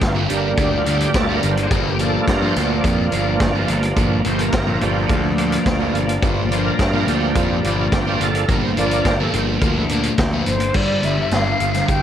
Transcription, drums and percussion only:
0.01 kick loud
0.01 snare loud
0.01 closed hi-hat medium
0.30 closed hi-hat medium
0.57 kick loud
0.57 closed hi-hat medium
0.86 closed hi-hat medium
1.00 closed hi-hat medium
1.14 kick loud
1.14 snare loud
1.14 closed hi-hat medium
1.43 closed hi-hat medium
1.57 closed hi-hat medium
1.71 kick loud
1.71 closed hi-hat medium
1.99 closed hi-hat medium
2.28 kick loud
2.28 snare loud
2.28 closed hi-hat medium
2.56 snare soft
2.56 closed hi-hat medium
2.84 kick loud
2.84 closed hi-hat medium
3.12 closed hi-hat medium
3.40 kick loud
3.40 snare loud
3.40 closed hi-hat medium
3.68 closed hi-hat medium
3.83 closed hi-hat medium
3.96 kick loud
3.96 closed hi-hat medium
4.24 closed hi-hat medium
4.39 closed hi-hat medium
4.52 kick loud
4.52 snare loud
4.52 closed hi-hat medium
4.81 closed hi-hat medium
5.09 kick loud
5.09 closed hi-hat medium
5.38 closed hi-hat medium
5.52 closed hi-hat medium
5.66 kick loud
5.66 snare loud
5.66 closed hi-hat medium
5.95 closed hi-hat medium
6.09 closed hi-hat medium
6.23 kick loud
6.23 closed hi-hat medium
6.52 closed hi-hat medium
6.79 kick loud
6.79 snare loud
6.79 closed hi-hat medium
7.08 closed hi-hat medium
7.35 kick loud
7.35 closed hi-hat medium
7.64 closed hi-hat medium
7.92 kick loud
7.92 snare loud
7.92 closed hi-hat medium
8.21 closed hi-hat medium
8.35 closed hi-hat medium
8.48 kick loud
8.48 closed hi-hat medium
8.77 closed hi-hat medium
8.91 closed hi-hat medium
9.05 kick loud
9.05 snare loud
9.05 closed hi-hat medium
9.33 closed hi-hat medium
9.61 kick loud
9.61 closed hi-hat medium
9.89 closed hi-hat medium
10.03 closed hi-hat medium
10.18 kick loud
10.18 snare loud
10.18 closed hi-hat medium
10.46 closed hi-hat medium
10.60 closed hi-hat medium
10.74 kick loud
10.74 crash loud
11.03 closed hi-hat medium
11.31 snare medium
11.31 closed hi-hat medium
11.60 closed hi-hat medium
11.74 snare soft
11.74 closed hi-hat medium
11.88 kick loud
11.88 closed hi-hat medium

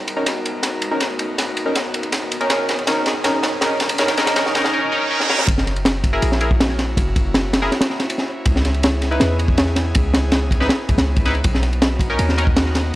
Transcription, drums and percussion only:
0.08 ride medium
0.26 snare soft
0.26 ride medium
0.46 ride medium
0.63 snare medium
0.63 ride medium
0.82 ride medium
1.00 snare medium
1.00 ride medium
1.19 ride medium
1.38 snare medium
1.38 ride medium
1.57 ride medium
1.75 snare medium
1.75 ride medium
1.94 ride medium
2.03 ride soft
2.12 snare medium
2.12 ride medium
2.32 ride medium
2.41 ride soft
2.50 snare medium
2.50 ride medium
2.69 snare medium
2.69 ride medium
2.79 ride soft
2.87 snare medium
2.87 ride medium
3.06 snare medium
3.06 ride medium
3.24 snare medium
3.24 ride medium
3.43 snare medium
3.43 ride medium
3.61 snare medium
3.61 ride medium
3.80 snare medium
3.80 ride medium
3.89 ride medium
3.98 snare medium
3.98 ride medium
4.08 snare medium
4.08 ride medium
4.17 snare loud
4.17 ride medium
4.27 snare medium
4.27 ride medium
4.36 snare medium
4.36 ride medium
4.46 snare medium
4.55 snare medium
4.55 ride medium
4.64 snare medium
5.20 snare medium
5.30 snare medium
5.38 snare medium
5.48 kick loud
5.48 ride medium
5.58 snare medium
5.66 snare soft
5.66 ride medium
5.76 ride soft
5.85 snare loud
5.85 ride loud
6.04 kick medium
6.04 ride medium
6.22 ride medium
6.32 snare soft
6.41 ride medium
6.51 kick loud
6.60 snare loud
6.60 ride medium
6.69 snare soft
6.79 snare medium
6.79 ride medium
6.97 kick loud
6.97 ride medium
7.16 kick loud
7.16 ride medium
7.34 snare loud
7.34 ride medium
7.53 snare loud
7.53 ride medium
7.62 snare soft
7.72 snare soft
7.72 ride medium
7.81 snare loud
7.81 ride medium
7.90 snare soft
8.00 snare medium
8.00 ride medium
8.10 ride medium
8.18 snare soft
8.46 kick loud
8.46 ride medium
8.56 snare medium
8.65 snare soft
8.65 ride medium
8.74 ride soft
8.83 snare loud
8.83 ride medium
9.02 snare soft
9.02 ride medium
9.12 ride soft
9.20 snare medium
9.20 ride medium
9.39 ride medium
9.48 kick medium
9.58 snare loud
9.58 ride medium
9.66 snare soft
9.76 snare medium
9.76 ride medium
9.95 kick loud
9.95 ride medium
10.14 snare loud
10.14 ride medium
10.32 snare medium
10.32 ride medium
10.51 kick medium
10.51 ride medium
10.61 snare soft
10.69 snare loud
10.69 ride medium
10.89 kick medium
10.89 ride medium
10.98 snare medium
10.98 ride medium
11.16 kick loud
11.16 ride medium
11.25 snare soft
11.25 ride medium
11.35 ride soft
11.44 kick loud
11.44 ride medium
11.54 snare medium
11.63 snare soft
11.63 ride medium
11.73 ride soft
11.82 snare loud
11.82 ride medium
11.99 kick loud
11.99 ride medium
12.19 ride medium
12.29 snare soft
12.38 ride medium
12.47 kick loud
12.56 snare loud
12.56 ride medium
12.66 snare soft
12.75 snare medium
12.75 ride medium

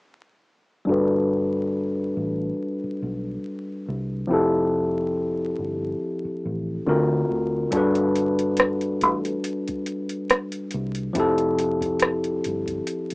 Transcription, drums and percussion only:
7.72 kick medium
7.72 closed hi-hat medium
7.95 closed hi-hat soft
8.15 closed hi-hat medium
8.39 closed hi-hat soft
8.57 cross-stick medium
8.57 closed hi-hat medium
8.81 closed hi-hat soft
9.01 kick medium
9.01 closed hi-hat soft
9.25 closed hi-hat soft
9.44 closed hi-hat medium
9.68 kick medium
9.68 closed hi-hat soft
9.86 closed hi-hat medium
10.09 closed hi-hat soft
10.30 cross-stick medium
10.30 closed hi-hat medium
10.52 closed hi-hat soft
10.71 closed hi-hat medium
10.95 closed hi-hat soft
11.15 kick loud
11.15 closed hi-hat medium
11.38 closed hi-hat soft
11.59 closed hi-hat medium
11.81 kick medium
11.81 closed hi-hat soft
11.99 cross-stick medium
11.99 closed hi-hat medium
12.24 closed hi-hat soft
12.44 closed hi-hat medium
12.66 kick medium
12.66 closed hi-hat soft
12.87 closed hi-hat medium
13.10 closed hi-hat soft

